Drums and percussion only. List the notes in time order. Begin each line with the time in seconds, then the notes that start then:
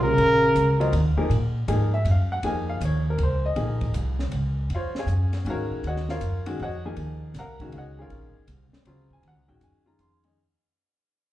0.18 ride
0.56 hi-hat pedal, ride
0.81 ride
0.93 ride
1.31 ride
1.68 hi-hat pedal, ride
2.05 ride
2.43 ride
2.81 hi-hat pedal, ride
3.18 ride
3.56 ride
3.81 kick, ride
3.94 hi-hat pedal, ride
4.19 snare
4.31 ride
4.70 ride
4.95 snare
5.08 hi-hat pedal, ride
5.33 snare, ride
5.46 ride
5.84 ride
5.96 snare
6.09 snare
6.21 hi-hat pedal, ride
6.46 ride
6.96 ride
7.34 snare, hi-hat pedal, ride
7.60 kick, ride
7.72 ride
8.10 ride
8.48 hi-hat pedal, ride
8.73 snare
8.85 ride
9.11 kick
9.23 ride
9.61 hi-hat pedal, ride
9.99 hi-hat pedal, ride
10.24 ride